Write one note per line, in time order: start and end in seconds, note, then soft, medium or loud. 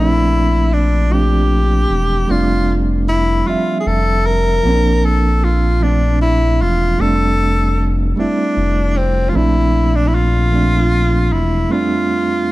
0.00 1.86 A#1 medium
0.00 1.02 F3 medium
0.00 1.02 A3 medium
0.00 1.03 C4 medium
0.00 1.04 D4 medium
0.00 0.75 E4 medium
0.73 1.14 D4 medium
1.10 2.19 F3 medium
1.10 2.20 A3 medium
1.10 2.21 C4 medium
1.10 2.32 G4 medium
1.14 2.21 D4 medium
1.91 2.25 E1 medium
2.27 3.43 F1 loud
2.27 3.37 G3 medium
2.27 3.37 A3 medium
2.27 3.38 C4 medium
2.27 3.39 D4 medium
2.27 2.81 F4 medium
3.09 3.49 E4 medium
3.45 3.55 F1 soft
3.45 4.55 F3 medium
3.45 4.55 G3 medium
3.45 4.56 C4 medium
3.45 3.79 F4 medium
3.50 4.57 E5 medium
3.80 3.89 G#4 medium
3.87 4.61 F1 medium
3.87 4.28 A4 medium
4.26 5.07 A#4 loud
4.63 6.62 A#1 medium
4.63 5.72 F3 medium
4.63 5.73 A#3 medium
4.63 5.74 C4 medium
4.68 4.72 C#4 medium
4.74 5.78 D4 medium
5.05 5.46 A4 medium
5.44 5.84 F4 medium
5.80 6.90 F3 medium
5.80 6.91 A3 soft
5.80 6.91 C4 soft
5.80 6.21 D4 medium
5.85 6.92 D4 medium
6.22 6.63 E4 medium
6.61 6.96 E1 medium
6.61 7.02 F4 medium
6.98 8.13 F1 loud
6.98 8.07 G3 medium
6.98 8.08 A3 medium
6.98 8.09 C4 medium
6.98 7.91 A4 loud
7.02 8.10 D4 medium
8.16 8.26 F1 soft
8.16 9.25 G3 medium
8.16 9.26 A3 medium
8.16 9.27 C4 medium
8.16 8.99 D4 medium
8.20 9.27 E4 medium
8.57 9.31 F1 medium
8.98 9.31 C4 medium
9.29 10.42 F3 medium
9.29 9.38 F4 medium
9.34 11.33 A#1 loud
9.34 10.43 A3 medium
9.34 10.44 C4 medium
9.34 10.44 D4 medium
9.34 9.97 E4 medium
9.95 10.09 D4 medium
10.07 10.16 E4 medium
10.15 11.34 F4 medium
10.51 11.60 F3 medium
10.51 11.61 A3 medium
10.51 11.62 C4 medium
10.55 11.63 D4 medium
11.31 11.66 E1 medium
11.31 11.74 E4 medium
11.68 12.52 F2 medium
11.68 12.52 G3 medium
11.68 12.52 A3 medium
11.68 12.52 C4 medium
11.68 12.52 F4 medium
11.73 12.52 D4 medium